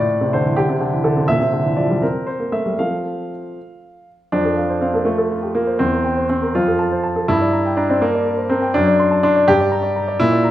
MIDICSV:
0, 0, Header, 1, 2, 480
1, 0, Start_track
1, 0, Key_signature, -1, "major"
1, 0, Tempo, 484262
1, 1278, Time_signature, 6, 3, 24, 8
1, 1766, Tempo, 509338
1, 4166, Tempo, 488998
1, 10232, End_track
2, 0, Start_track
2, 0, Title_t, "Grand piano"
2, 0, Program_c, 0, 0
2, 0, Note_on_c, 0, 45, 64
2, 0, Note_on_c, 0, 74, 81
2, 57, Control_c, 0, 64, 127
2, 111, Note_off_c, 0, 45, 0
2, 209, Note_on_c, 0, 48, 55
2, 321, Note_off_c, 0, 48, 0
2, 328, Note_off_c, 0, 74, 0
2, 330, Note_on_c, 0, 72, 69
2, 334, Note_on_c, 0, 50, 55
2, 444, Note_off_c, 0, 50, 0
2, 444, Note_on_c, 0, 52, 55
2, 558, Note_off_c, 0, 52, 0
2, 560, Note_on_c, 0, 67, 75
2, 565, Note_on_c, 0, 50, 58
2, 566, Note_off_c, 0, 72, 0
2, 578, Control_c, 0, 64, 0
2, 677, Note_off_c, 0, 50, 0
2, 683, Note_on_c, 0, 48, 57
2, 736, Control_c, 0, 64, 127
2, 796, Note_off_c, 0, 48, 0
2, 797, Note_on_c, 0, 50, 55
2, 912, Note_off_c, 0, 50, 0
2, 925, Note_on_c, 0, 52, 54
2, 1032, Note_on_c, 0, 69, 59
2, 1036, Note_off_c, 0, 52, 0
2, 1037, Note_off_c, 0, 67, 0
2, 1039, Note_on_c, 0, 50, 55
2, 1152, Note_off_c, 0, 50, 0
2, 1156, Note_on_c, 0, 48, 53
2, 1267, Note_on_c, 0, 76, 84
2, 1270, Note_off_c, 0, 48, 0
2, 1272, Note_on_c, 0, 46, 60
2, 1274, Note_off_c, 0, 69, 0
2, 1291, Control_c, 0, 64, 0
2, 1387, Note_on_c, 0, 48, 51
2, 1389, Note_off_c, 0, 46, 0
2, 1449, Control_c, 0, 64, 127
2, 1508, Note_off_c, 0, 48, 0
2, 1514, Note_on_c, 0, 50, 50
2, 1631, Note_on_c, 0, 52, 49
2, 1634, Note_off_c, 0, 50, 0
2, 1749, Note_on_c, 0, 74, 52
2, 1753, Note_on_c, 0, 53, 47
2, 1754, Note_off_c, 0, 52, 0
2, 1761, Note_off_c, 0, 76, 0
2, 1872, Note_off_c, 0, 53, 0
2, 1875, Note_on_c, 0, 55, 50
2, 1991, Note_on_c, 0, 70, 58
2, 1992, Note_off_c, 0, 55, 0
2, 1993, Note_on_c, 0, 60, 49
2, 1995, Note_off_c, 0, 74, 0
2, 2017, Control_c, 0, 64, 0
2, 2215, Control_c, 0, 64, 127
2, 2222, Note_on_c, 0, 72, 57
2, 2235, Note_off_c, 0, 70, 0
2, 2254, Note_off_c, 0, 60, 0
2, 2347, Note_on_c, 0, 58, 44
2, 2463, Note_on_c, 0, 57, 46
2, 2465, Note_on_c, 0, 76, 61
2, 2468, Note_off_c, 0, 58, 0
2, 2472, Note_off_c, 0, 72, 0
2, 2587, Note_off_c, 0, 57, 0
2, 2592, Note_on_c, 0, 55, 40
2, 2713, Note_off_c, 0, 55, 0
2, 2714, Note_on_c, 0, 69, 32
2, 2714, Note_on_c, 0, 77, 62
2, 2716, Note_off_c, 0, 76, 0
2, 2716, Note_on_c, 0, 60, 33
2, 2718, Note_on_c, 0, 53, 39
2, 2733, Control_c, 0, 64, 0
2, 2931, Control_c, 0, 64, 127
2, 3228, Note_off_c, 0, 53, 0
2, 3298, Note_off_c, 0, 69, 0
2, 3299, Note_off_c, 0, 60, 0
2, 3456, Control_c, 0, 64, 0
2, 3926, Note_off_c, 0, 77, 0
2, 4161, Note_on_c, 0, 62, 84
2, 4162, Note_on_c, 0, 41, 59
2, 4284, Note_on_c, 0, 69, 43
2, 4348, Control_c, 0, 64, 127
2, 4401, Note_on_c, 0, 77, 46
2, 4475, Note_off_c, 0, 69, 0
2, 4522, Note_on_c, 0, 72, 43
2, 4594, Note_off_c, 0, 77, 0
2, 4639, Note_on_c, 0, 60, 56
2, 4641, Note_off_c, 0, 62, 0
2, 4645, Note_on_c, 0, 77, 47
2, 4716, Note_off_c, 0, 72, 0
2, 4759, Note_on_c, 0, 58, 57
2, 4762, Note_off_c, 0, 60, 0
2, 4765, Note_on_c, 0, 69, 46
2, 4838, Note_off_c, 0, 77, 0
2, 4874, Note_on_c, 0, 57, 70
2, 4875, Note_on_c, 0, 65, 45
2, 4883, Note_off_c, 0, 58, 0
2, 4899, Control_c, 0, 64, 0
2, 4959, Note_off_c, 0, 69, 0
2, 5004, Note_on_c, 0, 69, 46
2, 5074, Note_off_c, 0, 65, 0
2, 5129, Note_on_c, 0, 65, 43
2, 5197, Note_off_c, 0, 69, 0
2, 5244, Note_on_c, 0, 67, 41
2, 5319, Note_off_c, 0, 65, 0
2, 5359, Note_off_c, 0, 57, 0
2, 5361, Note_on_c, 0, 58, 74
2, 5363, Note_on_c, 0, 65, 46
2, 5364, Note_off_c, 0, 67, 0
2, 5479, Note_on_c, 0, 72, 44
2, 5555, Note_off_c, 0, 65, 0
2, 5563, Note_off_c, 0, 41, 0
2, 5601, Note_on_c, 0, 60, 79
2, 5602, Note_off_c, 0, 58, 0
2, 5602, Note_off_c, 0, 72, 0
2, 5604, Note_on_c, 0, 40, 62
2, 5734, Note_on_c, 0, 70, 45
2, 5787, Control_c, 0, 64, 127
2, 5850, Note_on_c, 0, 79, 47
2, 5926, Note_off_c, 0, 70, 0
2, 5971, Note_on_c, 0, 72, 47
2, 6047, Note_off_c, 0, 79, 0
2, 6081, Note_off_c, 0, 60, 0
2, 6096, Note_on_c, 0, 60, 75
2, 6101, Note_on_c, 0, 79, 48
2, 6169, Note_off_c, 0, 72, 0
2, 6219, Note_on_c, 0, 70, 48
2, 6296, Note_off_c, 0, 79, 0
2, 6320, Note_off_c, 0, 40, 0
2, 6342, Note_off_c, 0, 60, 0
2, 6342, Note_off_c, 0, 70, 0
2, 6346, Note_on_c, 0, 65, 78
2, 6349, Control_c, 0, 64, 0
2, 6352, Note_on_c, 0, 41, 58
2, 6475, Note_on_c, 0, 69, 45
2, 6548, Control_c, 0, 64, 127
2, 6582, Note_on_c, 0, 81, 48
2, 6662, Note_off_c, 0, 69, 0
2, 6705, Note_on_c, 0, 72, 51
2, 6776, Note_off_c, 0, 81, 0
2, 6823, Note_on_c, 0, 81, 50
2, 6896, Note_off_c, 0, 72, 0
2, 6945, Note_on_c, 0, 69, 45
2, 7014, Note_off_c, 0, 81, 0
2, 7046, Note_off_c, 0, 41, 0
2, 7063, Note_off_c, 0, 69, 0
2, 7065, Note_off_c, 0, 65, 0
2, 7067, Note_on_c, 0, 64, 92
2, 7068, Note_on_c, 0, 43, 65
2, 7077, Control_c, 0, 64, 0
2, 7190, Note_on_c, 0, 74, 50
2, 7234, Control_c, 0, 64, 127
2, 7308, Note_on_c, 0, 82, 54
2, 7376, Note_off_c, 0, 74, 0
2, 7433, Note_on_c, 0, 79, 53
2, 7494, Note_off_c, 0, 82, 0
2, 7540, Note_off_c, 0, 64, 0
2, 7542, Note_on_c, 0, 62, 74
2, 7549, Note_on_c, 0, 82, 52
2, 7616, Note_off_c, 0, 79, 0
2, 7659, Note_off_c, 0, 62, 0
2, 7667, Note_on_c, 0, 74, 49
2, 7669, Note_on_c, 0, 60, 64
2, 7733, Note_off_c, 0, 82, 0
2, 7782, Note_off_c, 0, 60, 0
2, 7786, Note_on_c, 0, 58, 88
2, 7790, Control_c, 0, 64, 0
2, 7790, Note_on_c, 0, 70, 52
2, 7852, Note_off_c, 0, 74, 0
2, 7909, Note_on_c, 0, 74, 50
2, 7973, Note_off_c, 0, 70, 0
2, 8019, Note_on_c, 0, 70, 49
2, 8092, Note_off_c, 0, 74, 0
2, 8135, Note_on_c, 0, 72, 46
2, 8207, Note_off_c, 0, 70, 0
2, 8253, Note_off_c, 0, 72, 0
2, 8256, Note_on_c, 0, 60, 81
2, 8257, Note_off_c, 0, 58, 0
2, 8259, Note_on_c, 0, 70, 55
2, 8377, Note_on_c, 0, 79, 53
2, 8446, Note_off_c, 0, 70, 0
2, 8453, Note_off_c, 0, 43, 0
2, 8492, Note_off_c, 0, 60, 0
2, 8493, Note_off_c, 0, 79, 0
2, 8498, Note_on_c, 0, 62, 96
2, 8504, Note_on_c, 0, 42, 69
2, 8629, Note_on_c, 0, 74, 55
2, 8663, Control_c, 0, 64, 127
2, 8747, Note_on_c, 0, 84, 56
2, 8816, Note_off_c, 0, 74, 0
2, 8861, Note_on_c, 0, 81, 54
2, 8938, Note_off_c, 0, 84, 0
2, 8966, Note_off_c, 0, 62, 0
2, 8980, Note_on_c, 0, 62, 93
2, 8986, Note_on_c, 0, 84, 56
2, 9056, Note_off_c, 0, 81, 0
2, 9101, Note_on_c, 0, 74, 54
2, 9178, Note_off_c, 0, 84, 0
2, 9209, Note_off_c, 0, 42, 0
2, 9220, Note_on_c, 0, 67, 101
2, 9223, Note_off_c, 0, 74, 0
2, 9224, Note_off_c, 0, 62, 0
2, 9224, Note_on_c, 0, 43, 63
2, 9238, Control_c, 0, 64, 0
2, 9343, Note_on_c, 0, 74, 51
2, 9383, Control_c, 0, 64, 127
2, 9455, Note_on_c, 0, 82, 57
2, 9533, Note_off_c, 0, 74, 0
2, 9563, Note_on_c, 0, 74, 57
2, 9647, Note_off_c, 0, 82, 0
2, 9695, Note_on_c, 0, 82, 59
2, 9761, Note_off_c, 0, 74, 0
2, 9809, Note_on_c, 0, 74, 52
2, 9885, Note_off_c, 0, 82, 0
2, 9913, Note_off_c, 0, 43, 0
2, 9925, Note_on_c, 0, 64, 106
2, 9928, Note_on_c, 0, 46, 73
2, 9931, Note_off_c, 0, 74, 0
2, 9932, Note_off_c, 0, 67, 0
2, 9947, Control_c, 0, 64, 0
2, 10047, Note_on_c, 0, 74, 55
2, 10121, Control_c, 0, 64, 127
2, 10168, Note_on_c, 0, 82, 59
2, 10232, Note_off_c, 0, 46, 0
2, 10232, Note_off_c, 0, 64, 0
2, 10232, Note_off_c, 0, 74, 0
2, 10232, Note_off_c, 0, 82, 0
2, 10232, End_track
0, 0, End_of_file